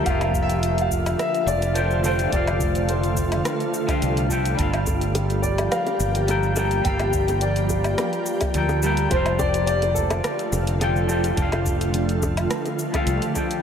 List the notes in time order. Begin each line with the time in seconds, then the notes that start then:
0.03 F1 D3 F3 A3 D4 F4 G4 F5, kick, closed hi-hat, cabasa
0.08 F4 A4
0.21 closed hi-hat, cabasa, low woodblock
0.34 kick, cabasa
0.42 E5
0.50 closed hi-hat, cabasa
0.63 closed hi-hat, cabasa
0.78 F5, closed hi-hat, cabasa
0.91 kick, cabasa
1.06 closed hi-hat, cabasa, low woodblock
1.19 E5, cross-stick, closed hi-hat, cabasa
1.34 closed hi-hat, cabasa
1.46 F1 D5, cabasa
1.62 closed hi-hat, cabasa
1.74 F3 D4 G4 A4 C5 G5, closed hi-hat, cabasa
1.91 cabasa
2.03 F3 D4 G4 A4 C5 G5, cabasa
2.19 closed hi-hat, cabasa
2.29 F1 F3 D4, kick, closed hi-hat
2.33 G4 A4 D5 F5, cabasa
2.47 closed hi-hat, cabasa, low woodblock
2.60 kick, cabasa
2.75 closed hi-hat, cabasa
2.89 C5, closed hi-hat, cabasa
3.03 closed hi-hat, cabasa
3.17 kick, cabasa
3.32 closed hi-hat, cabasa, low woodblock
3.45 cross-stick, closed hi-hat, cabasa
3.60 closed hi-hat, cabasa
3.74 cabasa
3.87 F3 D4 G4 A4 F5, kick, closed hi-hat, cabasa, low woodblock
4.02 C2, closed hi-hat, cabasa
4.17 closed hi-hat, cabasa
4.29 F3 D4 G4 A4 G5, kick, cabasa
4.45 closed hi-hat, cabasa
4.55 G1 F3 G3 A#3 D4 G4 A4, kick, closed hi-hat, cabasa
4.60 A#4 F5
4.74 closed hi-hat, cabasa, low woodblock
4.86 kick, high bongo, cabasa
5.01 closed hi-hat, cabasa
5.15 closed hi-hat, high bongo, cabasa
5.30 closed hi-hat, cabasa
5.42 D5, kick, cabasa
5.58 closed hi-hat, high bongo, cabasa, low woodblock
5.71 F5, cross-stick, closed hi-hat, cabasa
5.87 closed hi-hat, high bongo, cabasa
6.00 G1, cabasa
6.15 closed hi-hat, cabasa
6.27 G3 D4 A4 A#4 G5, closed hi-hat, high bongo, cabasa
6.43 cabasa
6.56 G3 D4 A4 A#4 G5, high bongo, cabasa
6.71 closed hi-hat, cabasa
6.82 G1 G3 D4 A4 G5, kick, closed hi-hat, cabasa
6.87 A#4 F5
7.00 closed hi-hat, high bongo, cabasa, low woodblock
7.13 kick, cabasa
7.28 closed hi-hat, high bongo, cabasa
7.41 D5, closed hi-hat, cabasa
7.56 closed hi-hat, cabasa
7.69 kick, high bongo, cabasa
7.84 closed hi-hat, cabasa, low woodblock
7.98 cross-stick, closed hi-hat, high bongo, cabasa
8.13 closed hi-hat, cabasa
8.26 cabasa
8.41 kick, closed hi-hat, high bongo, cabasa, low woodblock
8.54 D2 G3 D4 A4 A#4 G5, closed hi-hat, cabasa
8.69 high bongo, cabasa
8.83 G3 D4 A4 A#4 G5, cabasa
8.97 closed hi-hat, cabasa
9.09 F1 D3 F3 A3 D4 F4 G4 C5, kick, closed hi-hat, high bongo, cabasa
9.15 A4 F5
9.26 closed hi-hat, cabasa, low woodblock
9.39 D5, kick, high bongo, cabasa
9.54 closed hi-hat, cabasa
9.66 D5, closed hi-hat, cabasa
9.82 closed hi-hat, high bongo, cabasa
9.94 A4, kick, cabasa
10.10 closed hi-hat, high bongo, cabasa, low woodblock
10.24 cross-stick, closed hi-hat, cabasa
10.39 closed hi-hat, cabasa
10.52 F1, high bongo, cabasa
10.67 closed hi-hat, cabasa
10.80 F3 D4 G4 A4 G5, closed hi-hat, high bongo, cabasa
10.96 cabasa
11.08 F3 D4 G4 A4 G5, cabasa
11.24 closed hi-hat, high bongo, cabasa
11.34 F1 F3 D4 G4, kick, closed hi-hat, cabasa
11.40 A4 F5
11.52 closed hi-hat, high bongo, cabasa, low woodblock
11.66 kick, cabasa
11.81 closed hi-hat, cabasa
11.94 closed hi-hat, high bongo, cabasa
12.09 closed hi-hat, cabasa
12.22 kick, high bongo, cabasa
12.37 closed hi-hat, cabasa, low woodblock
12.51 cross-stick, closed hi-hat, cabasa
12.66 closed hi-hat, high bongo, cabasa
12.79 cabasa
12.92 F3 D4 G4 A4 F5, kick, closed hi-hat, high bongo, cabasa, low woodblock
13.07 C2, closed hi-hat, cabasa
13.22 closed hi-hat, cabasa
13.34 F3 D4 G4 A4 G5, kick, high bongo, cabasa
13.51 closed hi-hat, cabasa